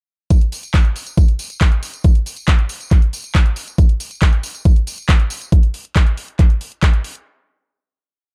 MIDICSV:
0, 0, Header, 1, 2, 480
1, 0, Start_track
1, 0, Tempo, 434783
1, 337, Time_signature, 4, 2, 24, 8
1, 9208, End_track
2, 0, Start_track
2, 0, Title_t, "Drums"
2, 337, Note_on_c, 9, 36, 111
2, 337, Note_on_c, 9, 42, 91
2, 341, Note_on_c, 9, 54, 36
2, 447, Note_off_c, 9, 36, 0
2, 447, Note_off_c, 9, 42, 0
2, 451, Note_off_c, 9, 54, 0
2, 457, Note_on_c, 9, 42, 41
2, 567, Note_off_c, 9, 42, 0
2, 577, Note_on_c, 9, 46, 108
2, 580, Note_on_c, 9, 54, 91
2, 687, Note_off_c, 9, 46, 0
2, 690, Note_off_c, 9, 54, 0
2, 697, Note_on_c, 9, 42, 40
2, 699, Note_on_c, 9, 54, 52
2, 807, Note_off_c, 9, 42, 0
2, 809, Note_off_c, 9, 54, 0
2, 815, Note_on_c, 9, 54, 37
2, 817, Note_on_c, 9, 36, 126
2, 817, Note_on_c, 9, 39, 116
2, 817, Note_on_c, 9, 42, 92
2, 925, Note_off_c, 9, 54, 0
2, 927, Note_off_c, 9, 36, 0
2, 927, Note_off_c, 9, 39, 0
2, 927, Note_off_c, 9, 42, 0
2, 937, Note_on_c, 9, 42, 39
2, 1047, Note_off_c, 9, 42, 0
2, 1057, Note_on_c, 9, 46, 90
2, 1063, Note_on_c, 9, 54, 90
2, 1167, Note_off_c, 9, 46, 0
2, 1173, Note_off_c, 9, 54, 0
2, 1175, Note_on_c, 9, 54, 55
2, 1177, Note_on_c, 9, 42, 41
2, 1286, Note_off_c, 9, 54, 0
2, 1287, Note_off_c, 9, 42, 0
2, 1294, Note_on_c, 9, 54, 40
2, 1296, Note_on_c, 9, 42, 87
2, 1297, Note_on_c, 9, 36, 114
2, 1405, Note_off_c, 9, 54, 0
2, 1407, Note_off_c, 9, 36, 0
2, 1407, Note_off_c, 9, 42, 0
2, 1417, Note_on_c, 9, 42, 39
2, 1527, Note_off_c, 9, 42, 0
2, 1535, Note_on_c, 9, 54, 83
2, 1537, Note_on_c, 9, 46, 104
2, 1645, Note_off_c, 9, 54, 0
2, 1647, Note_off_c, 9, 46, 0
2, 1654, Note_on_c, 9, 54, 52
2, 1656, Note_on_c, 9, 42, 41
2, 1764, Note_off_c, 9, 54, 0
2, 1767, Note_off_c, 9, 42, 0
2, 1776, Note_on_c, 9, 39, 127
2, 1776, Note_on_c, 9, 42, 96
2, 1777, Note_on_c, 9, 36, 127
2, 1783, Note_on_c, 9, 54, 41
2, 1887, Note_off_c, 9, 36, 0
2, 1887, Note_off_c, 9, 39, 0
2, 1887, Note_off_c, 9, 42, 0
2, 1894, Note_off_c, 9, 54, 0
2, 1896, Note_on_c, 9, 42, 39
2, 2007, Note_off_c, 9, 42, 0
2, 2016, Note_on_c, 9, 46, 91
2, 2016, Note_on_c, 9, 54, 89
2, 2126, Note_off_c, 9, 54, 0
2, 2127, Note_off_c, 9, 46, 0
2, 2136, Note_on_c, 9, 42, 41
2, 2137, Note_on_c, 9, 54, 58
2, 2247, Note_off_c, 9, 42, 0
2, 2248, Note_off_c, 9, 54, 0
2, 2251, Note_on_c, 9, 54, 44
2, 2256, Note_on_c, 9, 42, 87
2, 2257, Note_on_c, 9, 36, 119
2, 2361, Note_off_c, 9, 54, 0
2, 2367, Note_off_c, 9, 36, 0
2, 2367, Note_off_c, 9, 42, 0
2, 2376, Note_on_c, 9, 42, 39
2, 2487, Note_off_c, 9, 42, 0
2, 2496, Note_on_c, 9, 46, 112
2, 2502, Note_on_c, 9, 54, 90
2, 2607, Note_off_c, 9, 46, 0
2, 2609, Note_off_c, 9, 54, 0
2, 2609, Note_on_c, 9, 54, 52
2, 2617, Note_on_c, 9, 42, 37
2, 2719, Note_off_c, 9, 54, 0
2, 2727, Note_off_c, 9, 42, 0
2, 2733, Note_on_c, 9, 54, 38
2, 2737, Note_on_c, 9, 36, 125
2, 2737, Note_on_c, 9, 39, 126
2, 2737, Note_on_c, 9, 42, 94
2, 2844, Note_off_c, 9, 54, 0
2, 2847, Note_off_c, 9, 36, 0
2, 2847, Note_off_c, 9, 39, 0
2, 2847, Note_off_c, 9, 42, 0
2, 2857, Note_on_c, 9, 42, 37
2, 2967, Note_off_c, 9, 42, 0
2, 2972, Note_on_c, 9, 54, 104
2, 2977, Note_on_c, 9, 46, 94
2, 3082, Note_off_c, 9, 54, 0
2, 3087, Note_off_c, 9, 46, 0
2, 3097, Note_on_c, 9, 42, 38
2, 3101, Note_on_c, 9, 54, 51
2, 3207, Note_off_c, 9, 42, 0
2, 3211, Note_off_c, 9, 54, 0
2, 3217, Note_on_c, 9, 36, 123
2, 3217, Note_on_c, 9, 39, 38
2, 3217, Note_on_c, 9, 42, 88
2, 3220, Note_on_c, 9, 54, 37
2, 3327, Note_off_c, 9, 36, 0
2, 3327, Note_off_c, 9, 39, 0
2, 3327, Note_off_c, 9, 42, 0
2, 3330, Note_off_c, 9, 54, 0
2, 3337, Note_on_c, 9, 42, 39
2, 3447, Note_off_c, 9, 42, 0
2, 3457, Note_on_c, 9, 46, 105
2, 3460, Note_on_c, 9, 54, 95
2, 3567, Note_off_c, 9, 46, 0
2, 3570, Note_off_c, 9, 54, 0
2, 3577, Note_on_c, 9, 42, 40
2, 3578, Note_on_c, 9, 54, 49
2, 3687, Note_off_c, 9, 42, 0
2, 3688, Note_off_c, 9, 54, 0
2, 3697, Note_on_c, 9, 36, 123
2, 3697, Note_on_c, 9, 39, 127
2, 3697, Note_on_c, 9, 42, 97
2, 3807, Note_off_c, 9, 36, 0
2, 3807, Note_off_c, 9, 39, 0
2, 3807, Note_off_c, 9, 42, 0
2, 3817, Note_on_c, 9, 42, 40
2, 3927, Note_off_c, 9, 42, 0
2, 3931, Note_on_c, 9, 54, 87
2, 3937, Note_on_c, 9, 46, 96
2, 4041, Note_off_c, 9, 54, 0
2, 4047, Note_off_c, 9, 46, 0
2, 4057, Note_on_c, 9, 42, 40
2, 4060, Note_on_c, 9, 54, 59
2, 4167, Note_off_c, 9, 42, 0
2, 4170, Note_off_c, 9, 54, 0
2, 4176, Note_on_c, 9, 54, 45
2, 4177, Note_on_c, 9, 36, 118
2, 4177, Note_on_c, 9, 42, 87
2, 4286, Note_off_c, 9, 54, 0
2, 4287, Note_off_c, 9, 36, 0
2, 4287, Note_off_c, 9, 42, 0
2, 4297, Note_on_c, 9, 42, 39
2, 4407, Note_off_c, 9, 42, 0
2, 4417, Note_on_c, 9, 46, 111
2, 4417, Note_on_c, 9, 54, 102
2, 4527, Note_off_c, 9, 46, 0
2, 4527, Note_off_c, 9, 54, 0
2, 4534, Note_on_c, 9, 54, 53
2, 4537, Note_on_c, 9, 42, 35
2, 4645, Note_off_c, 9, 54, 0
2, 4647, Note_off_c, 9, 42, 0
2, 4654, Note_on_c, 9, 54, 43
2, 4657, Note_on_c, 9, 36, 127
2, 4657, Note_on_c, 9, 39, 124
2, 4657, Note_on_c, 9, 42, 92
2, 4765, Note_off_c, 9, 54, 0
2, 4767, Note_off_c, 9, 36, 0
2, 4767, Note_off_c, 9, 39, 0
2, 4767, Note_off_c, 9, 42, 0
2, 4777, Note_on_c, 9, 42, 37
2, 4887, Note_off_c, 9, 42, 0
2, 4894, Note_on_c, 9, 54, 98
2, 4897, Note_on_c, 9, 46, 99
2, 5004, Note_off_c, 9, 54, 0
2, 5007, Note_off_c, 9, 46, 0
2, 5017, Note_on_c, 9, 42, 38
2, 5019, Note_on_c, 9, 54, 55
2, 5127, Note_off_c, 9, 42, 0
2, 5129, Note_off_c, 9, 54, 0
2, 5137, Note_on_c, 9, 36, 127
2, 5137, Note_on_c, 9, 42, 88
2, 5247, Note_off_c, 9, 36, 0
2, 5247, Note_off_c, 9, 42, 0
2, 5257, Note_on_c, 9, 42, 38
2, 5367, Note_off_c, 9, 42, 0
2, 5377, Note_on_c, 9, 46, 111
2, 5377, Note_on_c, 9, 54, 100
2, 5487, Note_off_c, 9, 46, 0
2, 5488, Note_off_c, 9, 54, 0
2, 5495, Note_on_c, 9, 54, 52
2, 5497, Note_on_c, 9, 42, 40
2, 5606, Note_off_c, 9, 54, 0
2, 5607, Note_off_c, 9, 42, 0
2, 5617, Note_on_c, 9, 36, 127
2, 5617, Note_on_c, 9, 39, 127
2, 5617, Note_on_c, 9, 42, 88
2, 5621, Note_on_c, 9, 54, 42
2, 5727, Note_off_c, 9, 36, 0
2, 5728, Note_off_c, 9, 39, 0
2, 5728, Note_off_c, 9, 42, 0
2, 5732, Note_off_c, 9, 54, 0
2, 5737, Note_on_c, 9, 42, 38
2, 5847, Note_off_c, 9, 42, 0
2, 5852, Note_on_c, 9, 54, 95
2, 5857, Note_on_c, 9, 46, 99
2, 5962, Note_off_c, 9, 54, 0
2, 5968, Note_off_c, 9, 46, 0
2, 5977, Note_on_c, 9, 42, 38
2, 5977, Note_on_c, 9, 54, 60
2, 6088, Note_off_c, 9, 42, 0
2, 6088, Note_off_c, 9, 54, 0
2, 6097, Note_on_c, 9, 36, 117
2, 6097, Note_on_c, 9, 42, 88
2, 6207, Note_off_c, 9, 36, 0
2, 6207, Note_off_c, 9, 42, 0
2, 6217, Note_on_c, 9, 42, 39
2, 6327, Note_off_c, 9, 42, 0
2, 6337, Note_on_c, 9, 46, 113
2, 6447, Note_off_c, 9, 46, 0
2, 6457, Note_on_c, 9, 42, 36
2, 6567, Note_off_c, 9, 42, 0
2, 6577, Note_on_c, 9, 36, 126
2, 6577, Note_on_c, 9, 39, 118
2, 6577, Note_on_c, 9, 42, 92
2, 6687, Note_off_c, 9, 36, 0
2, 6687, Note_off_c, 9, 39, 0
2, 6687, Note_off_c, 9, 42, 0
2, 6697, Note_on_c, 9, 42, 35
2, 6807, Note_off_c, 9, 42, 0
2, 6817, Note_on_c, 9, 46, 99
2, 6927, Note_off_c, 9, 46, 0
2, 6937, Note_on_c, 9, 42, 37
2, 7047, Note_off_c, 9, 42, 0
2, 7057, Note_on_c, 9, 36, 125
2, 7057, Note_on_c, 9, 39, 35
2, 7057, Note_on_c, 9, 42, 84
2, 7167, Note_off_c, 9, 36, 0
2, 7167, Note_off_c, 9, 39, 0
2, 7167, Note_off_c, 9, 42, 0
2, 7177, Note_on_c, 9, 42, 36
2, 7287, Note_off_c, 9, 42, 0
2, 7297, Note_on_c, 9, 46, 115
2, 7407, Note_off_c, 9, 46, 0
2, 7417, Note_on_c, 9, 42, 37
2, 7527, Note_off_c, 9, 42, 0
2, 7537, Note_on_c, 9, 36, 127
2, 7537, Note_on_c, 9, 39, 121
2, 7537, Note_on_c, 9, 42, 88
2, 7647, Note_off_c, 9, 36, 0
2, 7647, Note_off_c, 9, 39, 0
2, 7647, Note_off_c, 9, 42, 0
2, 7657, Note_on_c, 9, 42, 38
2, 7767, Note_off_c, 9, 42, 0
2, 7777, Note_on_c, 9, 46, 97
2, 7887, Note_off_c, 9, 46, 0
2, 7897, Note_on_c, 9, 42, 38
2, 8007, Note_off_c, 9, 42, 0
2, 9208, End_track
0, 0, End_of_file